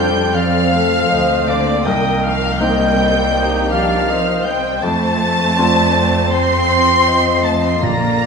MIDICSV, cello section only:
0, 0, Header, 1, 2, 480
1, 0, Start_track
1, 0, Tempo, 748130
1, 1193, Time_signature, 4, 2, 24, 8
1, 5301, End_track
2, 0, Start_track
2, 0, Title_t, "Cello section"
2, 0, Program_c, 0, 48
2, 0, Note_on_c, 0, 55, 97
2, 216, Note_off_c, 0, 55, 0
2, 218, Note_on_c, 0, 53, 94
2, 949, Note_on_c, 0, 50, 96
2, 950, Note_off_c, 0, 53, 0
2, 1193, Note_off_c, 0, 50, 0
2, 1198, Note_on_c, 0, 51, 80
2, 1430, Note_off_c, 0, 51, 0
2, 1438, Note_on_c, 0, 53, 94
2, 1672, Note_off_c, 0, 53, 0
2, 1674, Note_on_c, 0, 55, 105
2, 2388, Note_off_c, 0, 55, 0
2, 2389, Note_on_c, 0, 53, 91
2, 2859, Note_on_c, 0, 55, 85
2, 2861, Note_off_c, 0, 53, 0
2, 3095, Note_on_c, 0, 57, 114
2, 3096, Note_off_c, 0, 55, 0
2, 4035, Note_off_c, 0, 57, 0
2, 4055, Note_on_c, 0, 60, 107
2, 4776, Note_on_c, 0, 57, 93
2, 4778, Note_off_c, 0, 60, 0
2, 4896, Note_on_c, 0, 60, 103
2, 4897, Note_off_c, 0, 57, 0
2, 5012, Note_on_c, 0, 58, 102
2, 5017, Note_off_c, 0, 60, 0
2, 5301, Note_off_c, 0, 58, 0
2, 5301, End_track
0, 0, End_of_file